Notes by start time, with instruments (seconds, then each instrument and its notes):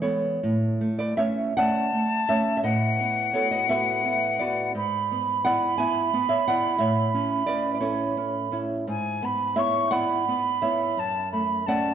Already playing: nylon-string guitar E3
0.02 nylon-string guitar G#3 B3 A4 C#5
0.43 nylon-string guitar A2
0.81 nylon-string guitar A3
0.99 nylon-string guitar B4 D5
1.17 nylon-string guitar A3 C#4 C#5 E5
1.57 nylon-string guitar A3 C#4 D5 F#5, flute A5
1.93 nylon-string guitar A3
2.29 nylon-string guitar A3 C#4 C#5 E5
2.57 nylon-string guitar E5
2.63 nylon-string guitar A2 B4 D#5, flute F#5
3.00 nylon-string guitar B3
3.34 nylon-string guitar B3 F#4 A4 C#5
3.51 nylon-string guitar B4 D#5
3.69 nylon-string guitar B3 F#4 B4 E5
4.05 nylon-string guitar B3
4.39 nylon-string guitar B3 F#4 B4 D5
4.75 nylon-string guitar G#2, flute B5
5.12 nylon-string guitar B3
5.45 nylon-string guitar B3 E4 D5 F#5
5.78 nylon-string guitar B3 E4 E5 G#5
6.13 nylon-string guitar B3
6.29 nylon-string guitar C#5 E5
6.48 nylon-string guitar B3 E4 D5 F#5
6.78 nylon-string guitar A2 C#5 E5
7.14 nylon-string guitar C#4
7.46 nylon-string guitar C#4 E4 B4 D5
7.75 nylon-string guitar D5
7.80 nylon-string guitar C#4 E4 A4 C#5
8.17 nylon-string guitar C#4
8.52 nylon-string guitar C#4 E4
8.87 nylon-string guitar G#2, flute G#5
9.23 nylon-string guitar B3, flute B5
9.56 nylon-string guitar B3 E4 C#5 E5, flute C#6
9.91 nylon-string guitar B3 E4 D5 F#5, flute B5
10.28 nylon-string guitar B3
10.62 nylon-string guitar B3 E4 C#5 E5
10.97 nylon-string guitar F#2, flute A5
11.32 nylon-string guitar A3, flute B5
11.66 nylon-string guitar A3 C#4 D5 F#5, flute A5